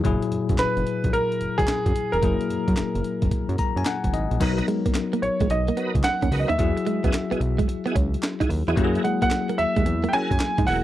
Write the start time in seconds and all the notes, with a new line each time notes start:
0.04 F#1 A#2 F#3 E4 G#4, kick, closed hi-hat
0.22 closed hi-hat
0.31 F#2, closed hi-hat
0.49 F#2, kick, closed hi-hat
0.58 F#1 B4, snare, clap, closed hi-hat
0.76 F#1, closed hi-hat
0.87 closed hi-hat
1.04 A#1, kick, closed hi-hat
1.13 A#4, closed hi-hat
1.32 closed hi-hat
1.41 F#1, closed hi-hat
1.58 F#1 G#4, kick, closed hi-hat
1.68 snare, clap, closed hi-hat
1.86 F#2, kick, closed hi-hat
1.96 closed hi-hat
2.12 E1 A#4, closed hi-hat
2.22 F#1 F#3 A#3 E4 G#4, kick, closed hi-hat
2.41 closed hi-hat
2.50 F#2, closed hi-hat
2.68 F#2, kick, closed hi-hat
2.77 F#1, snare, clap, closed hi-hat
2.95 F#1, closed hi-hat
3.04 closed hi-hat
3.22 F#1, kick, closed hi-hat
3.31 kick, closed hi-hat
3.49 F#2, closed hi-hat
3.58 A#5, kick, closed hi-hat
3.76 F#2 G#5, closed hi-hat
3.85 F#5, snare, clap, closed hi-hat
4.04 F#1, kick, closed hi-hat
4.13 G#1 D#5, closed hi-hat
4.31 A#1, closed hi-hat
4.40 B1 F#3 B3 D#4 F#4 A#4 B4 D#5, kick, closed hi-hat, crash
4.58 muted clean electric guitar stroke, closed hi-hat
4.68 G#3, closed hi-hat
4.86 A#1 A#3, kick, closed hi-hat
4.95 snare, clap, closed hi-hat
5.13 A#3, closed hi-hat
5.22 A#1 C#5, muted clean electric guitar stroke, closed hi-hat
5.40 A#1 G#3, kick, closed hi-hat
5.50 B1 D#5, muted clean electric guitar stroke, closed hi-hat
5.68 A#3, closed hi-hat
5.77 B3 F#4 A#4 B4 D#5, closed hi-hat
5.95 C#2, kick, closed hi-hat
6.04 F#5, snare, clap, closed hi-hat
6.22 D#2 C#4, kick, closed hi-hat
6.31 C#2 F#4 A#4 B4 D#5, muted clean electric guitar stroke, open hi-hat
6.39 D#5
6.48 D#2 D#4 E5, closed hi-hat
6.58 E2 F#3 E4 F#4 G#4, kick, closed hi-hat
6.77 muted clean electric guitar stroke, closed hi-hat
6.86 G#3, closed hi-hat
7.04 C#2 B3 E4 F#4 G#4 D#5, kick, closed hi-hat
7.13 snare, clap, closed hi-hat
7.31 B1 B3 E4 F#4 G#4 D#5, closed hi-hat
7.40 B1, muted clean electric guitar stroke, closed hi-hat
7.58 G#3, kick, closed hi-hat
7.68 muted clean electric guitar stroke, closed hi-hat
7.86 B3 E4 F#4 G#4 D#5, closed hi-hat
7.95 C#2 C#4, kick, closed hi-hat
8.14 closed hi-hat
8.23 snare, clap, closed hi-hat
8.40 D#4 E4 F#4 G#4 D#5, kick, closed hi-hat
8.49 D#2, muted clean electric guitar stroke, open hi-hat
8.68 E2 E4 F#4 G#4 D#5, closed hi-hat
8.76 F#2 F#3 A#3 E4 F#4 G4 G#4 A#4, kick, closed hi-hat
8.84 G#4
8.95 muted clean electric guitar stroke, closed hi-hat
9.04 G#3 F#5, closed hi-hat
9.22 D#2 A#3 F#5, kick, closed hi-hat
9.31 snare, clap, closed hi-hat
9.49 A#3, closed hi-hat
9.58 D#2 E5, muted clean electric guitar stroke, closed hi-hat
9.76 D#2 G#3, kick, closed hi-hat
9.86 E2, muted clean electric guitar stroke, closed hi-hat
10.04 A#3, closed hi-hat
10.09 G5
10.13 C#4 E4 F#4 G#4 A#4 G#5, closed hi-hat
10.31 F#2, kick, closed hi-hat
10.40 snare, clap, closed hi-hat
10.58 G#2 D#4, kick, closed hi-hat
10.67 E1 E4 F#4 G#4 A#4 F#5, muted clean electric guitar stroke, open hi-hat